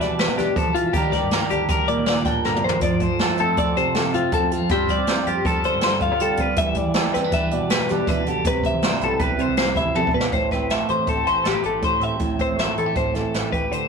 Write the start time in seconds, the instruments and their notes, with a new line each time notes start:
Already playing: clean electric guitar E3 G3 D4 G4 B4
0.00 clean electric guitar B2 D5, snare, closed hi-hat
0.11 fingered electric bass E2
0.19 clean electric guitar B4, snare, closed hi-hat
0.37 fingered electric bass E2, clean electric guitar D4 G4, snare, closed hi-hat
0.56 fingered electric bass E2, clean electric guitar F3 A4, kick, closed hi-hat
0.75 clean electric guitar E3 F4, closed hi-hat
0.86 fingered electric bass E2
0.93 fingered electric bass D#2, clean electric guitar D#3 G3 D4 G4 A#4, kick, closed hi-hat
1.12 clean electric guitar D5, kick, snare, closed hi-hat
1.23 fingered electric bass G2
1.31 clean electric guitar G3 A#4, snare, closed hi-hat
1.50 fingered electric bass D2, clean electric guitar D4 G4, closed hi-hat
1.69 fingered electric bass D2, clean electric guitar A#4, kick, closed hi-hat
1.88 clean electric guitar A#2 D5, closed hi-hat
1.98 fingered electric bass D#2
2.06 fingered electric bass D#2, clean electric guitar D5, snare, closed hi-hat
2.25 fingered electric bass A2, clean electric guitar D4 G5, kick, snare, closed hi-hat
2.44 fingered electric bass G2, clean electric guitar D3 A#4, snare
2.56 mid tom
2.64 fingered electric bass F2, clean electric guitar D#3 C5
2.69 floor tom
2.81 fingered electric bass F2, clean electric guitar F3 D5, kick, closed hi-hat
3.00 clean electric guitar C5, kick, closed hi-hat
3.11 fingered electric bass F2
3.19 clean electric guitar A3 A4, snare, closed hi-hat
3.37 fingered electric bass F2, clean electric guitar C4 A4, closed hi-hat
3.57 fingered electric bass F2, clean electric guitar A4 D5, kick, closed hi-hat
3.77 clean electric guitar C3 C5, closed hi-hat
3.86 fingered electric bass F2
3.95 clean electric guitar A4, snare, closed hi-hat
4.14 fingered electric bass F2, clean electric guitar C4 F4, closed hi-hat
4.32 fingered electric bass F2, clean electric guitar F3 A4, kick, closed hi-hat
4.51 clean electric guitar F4, closed hi-hat
4.61 fingered electric bass F2
4.69 fingered electric bass G2, clean electric guitar G3 C4 F4 G4 C5, kick, closed hi-hat
4.89 clean electric guitar D5, kick, closed hi-hat
4.98 fingered electric bass C3
5.07 clean electric guitar C4 C5, snare, closed hi-hat
5.26 fingered electric bass F2, clean electric guitar F4 G4, closed hi-hat
5.45 fingered electric bass F2, clean electric guitar A4, kick, closed hi-hat
5.64 clean electric guitar D3 C5, closed hi-hat
5.74 fingered electric bass G2
5.81 fingered electric bass G2, clean electric guitar C5, snare, closed hi-hat
6.01 clean electric guitar F4 F5, kick, closed hi-hat
6.12 fingered electric bass C3
6.20 clean electric guitar G3 A4, closed hi-hat
6.37 fingered electric bass C3, clean electric guitar B4, kick, closed hi-hat
6.56 fingered electric bass E2, clean electric guitar E3 E5, kick, closed hi-hat
6.74 clean electric guitar D5, kick, closed hi-hat
6.86 fingered electric bass E2
6.94 clean electric guitar G3 A4, snare, closed hi-hat
7.14 fingered electric bass E2, clean electric guitar C4 B4, snare, closed hi-hat
7.24 clean electric guitar D4
7.32 fingered electric bass E2, clean electric guitar B4 E5, kick, closed hi-hat
7.51 clean electric guitar B2 D5, closed hi-hat
7.62 fingered electric bass E2
7.70 clean electric guitar B4, snare, closed hi-hat
7.89 fingered electric bass E2, clean electric guitar D4 G4, snare, closed hi-hat
8.07 fingered electric bass E2, clean electric guitar E3 B4, kick, snare, closed hi-hat
8.26 clean electric guitar D3 G4, closed hi-hat
8.38 fingered electric bass E2
8.45 fingered electric bass C2, clean electric guitar C3 B4, kick, closed hi-hat
8.64 clean electric guitar E5, kick, closed hi-hat
8.74 fingered electric bass E2
8.82 clean electric guitar G3 C5, snare, closed hi-hat
9.01 fingered electric bass B1, clean electric guitar E4 A4, closed hi-hat
9.19 fingered electric bass B1, clean electric guitar B4, kick, closed hi-hat
9.37 clean electric guitar C3 C5, closed hi-hat
9.48 fingered electric bass C2
9.57 fingered electric bass C2, clean electric guitar C5, snare, closed hi-hat
9.76 clean electric guitar E4 E5, kick, snare, closed hi-hat
9.85 fingered electric bass E2
9.95 clean electric guitar C3 A4, high tom
10.07 kick
10.14 fingered electric bass E2, clean electric guitar B2 B4
10.20 snare
10.32 fingered electric bass A1, clean electric guitar A2 C5, kick, closed hi-hat
10.51 clean electric guitar C4 B4, kick, snare, closed hi-hat
10.70 clean electric guitar A3 E5, snare, closed hi-hat
10.89 fingered electric bass E2, clean electric guitar G4 C5, closed hi-hat
11.07 fingered electric bass A1, clean electric guitar A4, kick, closed hi-hat
11.26 fingered electric bass A1, clean electric guitar E3 C5, closed hi-hat
11.44 fingered electric bass A1, clean electric guitar G4 A4, snare, closed hi-hat
11.54 clean electric guitar B4
11.63 fingered electric bass A1, clean electric guitar G4 A4, closed hi-hat
11.82 clean electric guitar A2 C5, kick, closed hi-hat
12.00 fingered electric bass A2, clean electric guitar C4 E5, closed hi-hat
12.19 fingered electric bass A1, clean electric guitar A2, kick, closed hi-hat
12.39 clean electric guitar C4 C5, kick, closed hi-hat
12.57 clean electric guitar A3 E5, snare, closed hi-hat
12.78 fingered electric bass E2, clean electric guitar E4 A4, closed hi-hat
12.86 clean electric guitar G4
12.95 fingered electric bass A1, clean electric guitar C5, kick, closed hi-hat
13.14 fingered electric bass A1, clean electric guitar E3 A4, snare, closed hi-hat
13.34 fingered electric bass A1, clean electric guitar B4, snare, closed hi-hat
13.52 fingered electric bass A1, clean electric guitar G4 B4, kick, closed hi-hat
13.71 clean electric guitar D3 C5, closed hi-hat